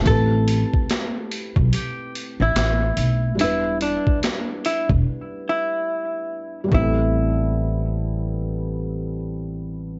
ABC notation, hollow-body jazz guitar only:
X:1
M:4/4
L:1/16
Q:"Swing 16ths" 1/4=72
K:Am
V:1 name="Hollow-body jazz guitar"
A8 G3 E4- E | E2 D2 z2 E z3 E6 | E12 z4 |]